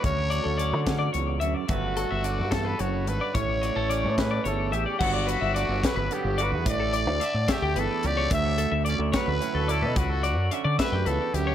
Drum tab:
CC |------|------|------|x-----|
HH |xxxxxx|xxxxxx|xxxxxx|-xxxxx|
SD |---o--|---o--|---o--|---o--|
BD |o--o--|o--o--|o--o--|o--o--|

CC |------|------|------|
HH |xxxxxx|xxxxxx|xxxxxx|
SD |---o--|---o--|---o--|
BD |o--o--|o--o--|o--o--|